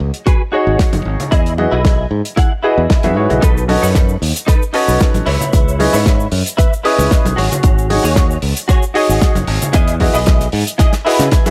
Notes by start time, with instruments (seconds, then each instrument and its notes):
0.00 fingered electric bass C#2
0.14 closed hi-hat
0.26 clean electric guitar F#4 G#4 B4, kick, closed hi-hat
0.52 grand piano D#4 F#4 G#4 C#5 D#5, clean electric guitar F#4 G#4 C#5
0.67 fingered electric bass G#1
0.79 kick, snare, closed hi-hat
0.93 fingered electric bass F#1, closed hi-hat, high conga
1.05 fingered electric bass G#1
1.20 closed hi-hat, low conga
1.31 fingered electric bass E2, clean electric guitar E4 G#4 D#5, kick, closed hi-hat
1.46 closed hi-hat
1.58 grand piano E4 F#4 G#4 B4 D#5, high conga
1.71 fingered electric bass B1, clean electric guitar E4 G#4 D#5
1.85 kick, snare, closed hi-hat
2.11 fingered electric bass G#2
2.25 closed hi-hat
2.36 clean electric guitar E4 G#4 F#5, kick, closed hi-hat
2.63 clean electric guitar E4 G#4 D#5, grand piano E4 F#4 G#4 B4 D#5
2.78 fingered electric bass E2
2.90 kick, snare, closed hi-hat
3.03 fingered electric bass E2, grand piano E4 F#4 G#4 B4 E5, closed hi-hat, high conga
3.16 fingered electric bass G#2, grand piano E4 F#4 G#4 B4 C#5
3.29 fingered electric bass B1, grand piano E4 F#4 G#4 B4 D#5, closed hi-hat, low conga
3.41 fingered electric bass B1, clean electric guitar D#4 A4 B4, kick, closed hi-hat, cabasa
3.58 cabasa
3.68 grand piano C#4 F#4 A4 B4 D#5, open hi-hat, high conga
3.82 fingered electric bass F#2, clean electric guitar D#4 A4 B4, cabasa
3.95 kick, snare, closed hi-hat, cabasa
4.09 cabasa
4.22 fingered electric bass D#2, open hi-hat
4.36 closed hi-hat, cabasa
4.46 clean electric guitar D#4 A4 B4, kick, closed hi-hat, cabasa
4.62 cabasa
4.73 grand piano C#4 F#4 A4 B4 D#5, clean electric guitar D#4 A4 B4, open hi-hat
4.88 fingered electric bass B1, cabasa
5.00 kick, snare, closed hi-hat, cabasa
5.14 fingered electric bass A1, closed hi-hat, high conga, cabasa
5.26 fingered electric bass C#2, clean electric guitar E4 B4 C#5, open hi-hat
5.41 closed hi-hat, low conga, cabasa
5.53 fingered electric bass C#2, kick, closed hi-hat, cabasa
5.68 cabasa
5.79 grand piano C#4 E4 G#4 B4 D#5, open hi-hat, high conga
5.93 fingered electric bass G#2, clean electric guitar E4 B4 C#5, muted conga, cabasa
6.06 kick, snare, closed hi-hat, cabasa
6.20 cabasa
6.32 fingered electric bass F#2, open hi-hat
6.46 closed hi-hat, cabasa
6.57 clean electric guitar E4 B4 E5, kick, closed hi-hat, cabasa
6.73 cabasa
6.83 grand piano C#4 E4 G#4 B4 D#6, clean electric guitar E4 B4 D#5, open hi-hat
6.99 fingered electric bass C#2, muted conga, cabasa
7.11 kick, snare, closed hi-hat, cabasa
7.25 fingered electric bass B1, closed hi-hat, high conga, cabasa
7.36 fingered electric bass G#1, clean electric guitar F#4 G#4 C#5, open hi-hat
7.52 closed hi-hat, low conga, cabasa
7.63 fingered electric bass G#1, kick, closed hi-hat, cabasa
7.78 cabasa
7.90 grand piano D#4 F#4 G#4 C#5 D#5, open hi-hat, high conga
8.03 fingered electric bass D#2, clean electric guitar F#4 G#4 C#5, cabasa
8.16 kick, snare, closed hi-hat, cabasa
8.31 cabasa
8.42 fingered electric bass C#2, open hi-hat
8.56 closed hi-hat, cabasa
8.68 clean electric guitar F#4 G#4 C#5, kick, closed hi-hat, cabasa
8.83 cabasa
8.94 grand piano D#4 F#4 G#4 C#5 D#5, clean electric guitar F#4 G#4 D#5, open hi-hat
9.09 fingered electric bass G#1, cabasa
9.22 kick, snare, closed hi-hat, cabasa
9.35 fingered electric bass F#1, closed hi-hat, high conga, cabasa
9.47 fingered electric bass G#1, open hi-hat
9.62 closed hi-hat, low conga, cabasa
9.73 fingered electric bass E2, clean electric guitar E4 G#4 D#5, kick, closed hi-hat, cabasa
9.88 closed hi-hat, cabasa
10.00 grand piano E4 F#4 G#4 B4 D#5, kick, open hi-hat, high conga
10.14 fingered electric bass B1, clean electric guitar E4 G#4 D#5, muted conga, cabasa
10.26 kick, snare, closed hi-hat, cabasa
10.40 snare, closed hi-hat, cabasa
10.52 fingered electric bass G#2, open hi-hat
10.67 closed hi-hat, cabasa
10.78 clean electric guitar E4 G#4 D#5, kick, snare, closed hi-hat, cabasa
10.93 snare, closed hi-hat, cabasa
11.05 clean electric guitar E4 G#4 B4, grand piano E4 F#4 G#4 B4 D#5, open hi-hat
11.19 fingered electric bass C#3, snare, closed hi-hat, muted conga, cabasa
11.32 kick, snare, closed hi-hat, cabasa
11.46 grand piano E4 F#4 G#4 B4 E5, closed hi-hat, high conga, cabasa